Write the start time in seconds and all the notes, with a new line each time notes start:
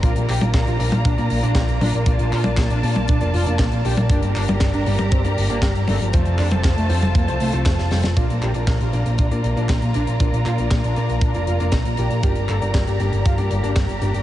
Already playing: A#4
0.03 A#1 A#3 D4 F4 D5 A#5, kick, closed hi-hat
0.16 A#1 A#3, closed hi-hat
0.29 A#1 G4, clap, open hi-hat
0.41 A#1 A#3 D4 F4 D5, closed hi-hat, high tom
0.54 A#1 A#3, kick, snare, clap, closed hi-hat
0.67 A#1 F4, closed hi-hat
0.79 A#1 A#3 D4 F4 D5, open hi-hat
0.92 A#1 A#3, closed hi-hat, high tom
1.05 A#1 D4, kick, closed hi-hat
1.18 A#2 A#3 D4 F4 D5, closed hi-hat
1.30 A#1 A#3, open hi-hat
1.43 A#1 A#3 D4 F4 D5, closed hi-hat
1.55 A#1 A#3, kick, snare, clap, closed hi-hat
1.68 A#1 A#3, closed hi-hat
1.81 A#1 A#3 D4 F4 D5, open hi-hat, high tom
1.94 A#1 A#3, closed hi-hat
2.06 A#1 A#3 D4 F4 D5 A5, kick, closed hi-hat
2.19 A#1 A#3, closed hi-hat
2.32 A#2 F4, clap, open hi-hat
2.44 A#1 A#3 D4 F4 D5, closed hi-hat, high tom
2.57 A#1 A#3, kick, snare, clap, closed hi-hat
2.70 A#1 D4, closed hi-hat
2.83 A#2 A#3 D4 F4 D5, open hi-hat
2.95 A#1 A#3, closed hi-hat, high tom
3.08 A#2 D4, kick, closed hi-hat
3.21 F1 A#3 D4 F4 D5, closed hi-hat
3.34 F1 F4, open hi-hat
3.46 F1 A#3 D4 F4 D5, closed hi-hat
3.59 A#1 A#3, kick, snare, clap, closed hi-hat
3.72 A#1 A#3, closed hi-hat
3.85 A#1 A#3 D4 F4 G4 D5, open hi-hat
3.97 A#1 A#3, closed hi-hat, high tom
4.09 G1 A#3 D4 G4 A#4 D5 A#5, kick, closed hi-hat
4.22 G1 G3, closed hi-hat
4.35 G1 D4, clap, open hi-hat
4.48 G1 G3 A#3 D4 G4 D5, closed hi-hat, high tom
4.60 G1 G3, kick, snare, clap, closed hi-hat
4.74 G1 D4, closed hi-hat
4.86 G1 G3 A#3 D4 G4 D5, open hi-hat
4.99 G1 G3, closed hi-hat, high tom
5.11 G1 C4, kick, closed hi-hat
5.24 G2 G3 A#3 D4 G4 D5, closed hi-hat
5.37 G1 G3, open hi-hat
5.50 G1 A#3 D4 G4 D5, closed hi-hat
5.62 G1 G3, kick, snare, clap, closed hi-hat
5.75 G1 G3, closed hi-hat
5.88 G1 A3 A#3 D4 G4 D5, open hi-hat, high tom
6.01 G1 F3, closed hi-hat
6.13 F1 F3 A3 C4 F4 A4 C5 A5, kick, closed hi-hat
6.25 F1 F3, closed hi-hat
6.38 F2 D4, clap, open hi-hat
6.51 F1 F3 A3 C4 F4 C5, closed hi-hat, high tom
6.64 F1 F3, kick, snare, clap, closed hi-hat
6.77 F1 A3, closed hi-hat
6.90 F2 F3 A3 C4 F4 C5, open hi-hat
7.02 F1 F3, closed hi-hat, high tom
7.15 F2 A#3, kick, closed hi-hat
7.28 C2 F3 A3 C4 F4 C5, closed hi-hat
7.40 C2 A3, open hi-hat
7.53 C2 F3 A3 C4 F4 C5, closed hi-hat
7.66 F1 F3, kick, snare, clap, closed hi-hat
7.79 F1 F3, snare, closed hi-hat
7.91 F1 G3 A3 C4 F4 C5, snare, open hi-hat
8.04 F1 F3, snare, closed hi-hat, high tom
8.17 A#1 A#3 D4 F4 A#4 D5 A#5, kick, closed hi-hat
8.29 A#1 A#3, closed hi-hat
8.42 A#1 G4, clap, closed hi-hat
8.54 A#1 A#3 D4 F4 D5, closed hi-hat
8.67 A#1 A#3, kick, snare, clap, closed hi-hat
8.80 A#1 F4, closed hi-hat
8.93 A#1 A#3 D4 F4 D5, closed hi-hat
9.06 A#1 A#3, closed hi-hat
9.18 A#1 D4, kick, closed hi-hat
9.31 A#2 A#3 D4 F4 D5, closed hi-hat
9.44 A#1 A#3, closed hi-hat
9.57 A#1 A#3 D4 F4 D5, closed hi-hat
9.69 A#1 A#3, kick, snare, clap, closed hi-hat
9.82 A#1 A#3, closed hi-hat
9.94 A#1 A#3 D4 F4 D5, closed hi-hat
10.07 A#1 A#3, closed hi-hat
10.20 A#1 A#3 D4 F4 D5, kick, closed hi-hat
10.33 A#1 A#3, closed hi-hat
10.46 A#2 F4, clap, closed hi-hat
10.58 A#1 A#3 D4 F4 D5, closed hi-hat
10.71 A#1 A#3, kick, snare, clap, closed hi-hat
10.84 A#1 D4, closed hi-hat
10.96 A#2 A#3 D4 F4 D5, closed hi-hat
11.09 A#1 A#3, closed hi-hat
11.21 A#2 D4, kick, closed hi-hat
11.34 F1 A#3 D4 F4 D5, closed hi-hat
11.47 F1 F4, closed hi-hat
11.60 F1 A#3 D4 F4 D5, closed hi-hat
11.72 A#1 A#3, kick, snare, clap, closed hi-hat
11.85 A#1 A#3, closed hi-hat
11.97 A#1 A#3 D4 F4 G4 D5, closed hi-hat
12.11 A#1 A#3, closed hi-hat
12.23 G1 A#3 D4 G4 D5, kick, closed hi-hat
12.35 G1 G3, closed hi-hat
12.49 G1 A4, clap, closed hi-hat
12.61 G1 G3 A#3 D4 G4 D5, closed hi-hat
12.74 G1 G3, kick, snare, clap, closed hi-hat
12.87 G1 G4, closed hi-hat
13.00 G1 G3 A#3 D4 G4 D5, closed hi-hat
13.12 G1 G3, closed hi-hat
13.25 G1 F4, kick, closed hi-hat
13.38 G2 G3 A#3 D4 G4 D5, closed hi-hat
13.50 G1 G3, closed hi-hat
13.63 G1 A#3 D4 G4 D5, closed hi-hat
13.76 G1 G3, kick, snare, clap, closed hi-hat
13.89 G1 G3, closed hi-hat
14.01 G1 A#3 D4 G4 D5, closed hi-hat
14.14 G1 G3, closed hi-hat